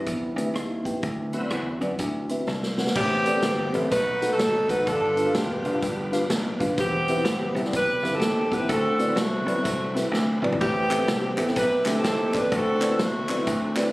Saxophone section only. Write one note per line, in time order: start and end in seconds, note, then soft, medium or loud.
2.95 3.88 B3 medium
2.95 3.88 C4 medium
2.95 3.70 G4 loud
3.91 4.31 D#4 medium
3.91 4.31 F#4 medium
3.91 4.27 B4 loud
4.32 4.84 D#4 medium
4.32 4.84 F#4 medium
4.32 4.70 A4 loud
4.69 4.87 B4 loud
4.86 5.35 D4 medium
4.86 5.78 F4 medium
4.86 5.34 A4 loud
5.36 6.27 B3 medium
5.36 6.27 D4 medium
5.36 6.13 G4 medium
6.79 7.70 B3 medium
6.79 7.70 C4 medium
6.79 7.52 G4 loud
7.75 8.66 G4 medium
7.75 8.11 B4 loud
8.13 8.66 C4 medium
8.13 8.52 A4 loud
8.52 8.69 B4 loud
8.69 9.17 C4 medium
8.69 9.16 F#4 medium
8.69 9.14 A4 loud
9.17 10.09 A3 medium
9.17 10.09 C4 medium
9.17 9.95 F#4 medium
10.61 11.53 B3 medium
10.61 11.53 C4 medium
10.61 11.35 G4 loud
11.57 11.96 E4 medium
11.57 12.48 G4 medium
11.57 11.93 B4 loud
11.97 12.49 C4 medium
11.97 12.49 E4 medium
11.97 12.35 A4 loud
12.37 12.53 B4 loud
12.53 12.99 C4 medium
12.53 13.00 F#4 medium
12.53 13.01 A4 loud
13.00 13.91 A3 medium
13.00 13.91 C4 medium
13.00 13.74 F#4 medium